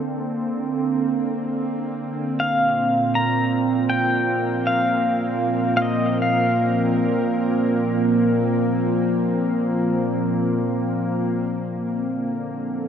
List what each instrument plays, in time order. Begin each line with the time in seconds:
Already playing: ambient pad D3 A#3 C4 A4
2.38 ambient pad A#2, pedal steel guitar F5
2.61 ambient pad F3
3.15 ambient pad A#4, pedal steel guitar A#5
3.90 pedal steel guitar G5
4.67 pedal steel guitar F5
5.77 pedal steel guitar F5
5.82 pedal steel guitar D#5
6.22 pedal steel guitar F5
11.65 ambient pad D3
12.11 ambient pad A4